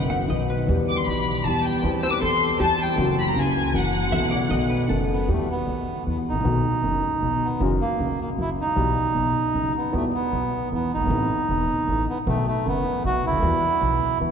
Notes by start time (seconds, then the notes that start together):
Already playing: F#1 F#2 D#3 F#3 B3 F#4
0.10 F#5
0.27 B1 B2 D#3 F#3 B3 D#5
0.32 F#4
0.50 B4
0.67 E2 E3 G3 B3 G4
0.89 D6
0.98 C6
1.06 B1 B2 E3 G3 B3 G4 B5
1.44 E2 E3 G3 B3 G4 A5
1.65 G5
1.83 E2 E3 G3 C4 G4
2.03 C5 E6
2.12 B4 D6
2.20 E2 E3 G3 C4 G4 A4 C6
2.59 E2 E3 G3 C4 G4 A5
2.63 G4
2.78 E4 G5
2.96 F#1 F#2 E3 F#3 A#3 C#4
3.00 F#4
3.19 B5
3.28 A#5
3.34 C#2 C#3 E3 A#3 C#4
3.38 F#4 G#5
3.72 F#1 F#2 E3 F#3 A#3 C#4 F#4
3.76 F#5
4.11 B1 B2 E3 A3 B3 F#4 E5
4.31 D5
4.48 B1 B2 D#3 A3 B3 F#4 D#5
4.70 B4
4.88 F#1 F#2 D#3 A3 B3 F#4 A4
5.12 B3
5.28 E2 E3 G3 A3 B3 G4
5.51 B3
5.68 B1 B2
6.06 E2 E3 B3
6.29 G#1 D#4
6.35 A1
6.39 A#1
6.44 B1 B2 D#3 A3 B3 F#4
6.83 F#1 F#2
7.22 B1 B2
7.44 B3
7.60 F#1 F#2 E3 F#3 G#3 A#3 C#4 F#4
7.81 A#3
8.00 C#2 C#3
8.21 A#3
8.38 F#1 F#2 F#3 E4
8.61 D#4
8.76 B1 B2 E3 G3 B3 G4
9.14 B1 B2
9.54 F#1 F#2
9.77 B3
9.92 E2 E3 G3 B3 F#4
9.96 A3
10.14 B3
10.32 B1 B2
10.72 E2 E3 B3
10.94 F#1 D#4
11.00 G1
11.06 G#1
11.10 A1 A2 C3 A3 B3 E4
11.49 E1 E2
11.88 A1 A2
12.09 B3
12.26 B1 B2 D#3 F#3 A3 B3 F#4
12.48 A3
12.66 F#1 F#2 B3
13.04 B1 B2 F#4
13.26 C#2 E4
13.32 D2
13.38 D#2
13.42 E2 E3 G3 B3 F#4
13.81 B1 B2
14.20 E2 E3